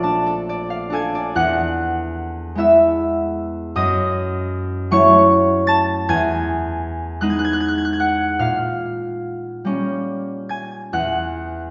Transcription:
0.00 1.37 A#1 medium
0.00 1.38 A#2 medium
0.00 1.37 F3 medium
0.00 1.38 A3 medium
0.00 0.90 D4 soft
0.00 0.25 A4 medium
0.00 0.48 D5 medium
0.00 0.69 F5 medium
0.00 1.37 A5 medium
0.26 0.91 A4 medium
0.49 1.14 D5 medium
0.70 1.38 F5 medium
0.90 1.38 D4 soft
0.90 1.38 A4 medium
0.90 3.80 G#5 medium
0.94 3.79 G#6 medium
1.15 1.38 D5 soft
1.35 3.80 E2 medium
1.35 5.26 F#5 medium
1.35 5.26 F#6 medium
2.55 3.79 G#3 soft
2.55 3.79 B3 soft
2.55 4.91 E4 soft
2.55 6.48 E5 medium
2.60 6.50 E6 medium
3.76 6.10 F#2 medium
3.76 7.67 D#5 medium
3.76 5.73 D#6 medium
4.91 6.11 F#3 medium
4.91 6.11 A3 medium
4.91 8.43 E4 medium
4.91 6.11 C#5 medium
4.91 6.11 C#6 medium
5.67 6.10 A5 medium
5.67 6.10 A6 loud
6.09 8.43 E2 medium
6.09 8.44 G#5 medium
6.09 7.29 G#6 loud
7.21 8.43 G#3 soft
7.21 8.43 B3 soft
7.21 8.43 D#4 medium
7.21 7.34 F#6 medium
7.30 7.42 G#6 medium
7.39 7.51 F#6 medium
7.45 7.57 G#6 medium
7.53 7.66 F#6 medium
7.60 7.73 G#6 medium
7.68 7.81 F#6 medium
7.78 7.90 G#6 medium
7.85 7.97 F#6 medium
7.93 8.06 G#6 medium
8.00 8.43 F#5 medium
8.00 8.68 F#6 medium
8.39 10.95 A#2 medium
8.39 10.96 F5 medium
8.39 10.95 F6 medium
9.65 10.95 G3 soft
9.65 10.96 A#3 soft
9.65 10.96 C#4 soft
10.49 11.71 G#5 medium
10.49 11.71 G#6 medium
10.93 11.71 E2 soft
10.93 11.71 F#5 medium
10.93 11.71 F#6 medium

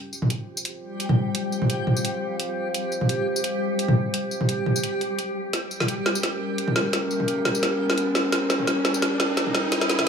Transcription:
0.00 10.09 G3 medium
0.00 6.03 F4 medium
0.00 10.09 G4 medium
0.00 0.88 A#4 medium
0.00 5.54 G5 medium
0.13 tambourine soft
0.22 6.70 C5 medium
0.22 mid tom medium
0.30 closed hi-hat medium
0.57 tambourine medium
0.65 closed hi-hat medium
1.00 closed hi-hat medium
1.09 mid tom medium
1.16 5.54 F5 medium
1.35 closed hi-hat medium
1.52 tambourine soft
1.62 mid tom medium
1.70 closed hi-hat medium
1.87 mid tom medium
1.97 tambourine medium
2.05 closed hi-hat medium
2.40 closed hi-hat medium
2.74 closed hi-hat medium
2.92 tambourine soft
3.01 mid tom soft
3.09 closed hi-hat medium
3.36 tambourine medium
3.44 closed hi-hat medium
3.79 closed hi-hat medium
3.88 mid tom medium
4.14 closed hi-hat medium
4.31 tambourine soft
4.41 mid tom medium
4.49 closed hi-hat medium
4.66 mid tom medium
4.76 tambourine medium
4.84 closed hi-hat medium
5.01 closed hi-hat soft
5.19 closed hi-hat medium
5.53 10.09 G3 medium
5.53 snare soft
5.53 closed hi-hat medium
5.53 riser medium
5.71 tambourine soft
5.80 snare soft
5.80 mid tom medium
5.88 10.09 C#4 medium
5.88 10.09 A#4 medium
5.88 closed hi-hat medium
6.06 snare medium
6.15 tambourine medium
6.23 snare soft
6.23 closed hi-hat medium
6.52 10.09 G5 medium
6.58 closed hi-hat medium
6.68 mid tom medium
6.76 snare medium
6.93 snare medium
6.93 closed hi-hat medium
7.11 tambourine soft
7.20 mid tom medium
7.28 closed hi-hat medium
7.45 snare medium
7.45 mid tom medium
7.55 tambourine medium
7.63 snare medium
7.63 closed hi-hat medium
7.90 snare medium
7.98 closed hi-hat medium
8.15 snare medium
8.32 snare medium
8.32 closed hi-hat medium
8.50 snare medium
8.50 tambourine soft
8.59 mid tom medium
8.67 snare medium
8.67 closed hi-hat medium
8.85 snare medium
8.94 tambourine medium
9.02 snare medium
9.02 closed hi-hat medium
9.20 snare medium
9.37 snare medium
9.37 closed hi-hat medium
9.47 mid tom medium
9.55 snare medium
9.72 snare medium
9.72 closed hi-hat medium
9.81 snare medium
9.90 snare medium
9.90 closed hi-hat soft
9.90 tambourine soft
9.99 snare medium
9.99 mid tom medium

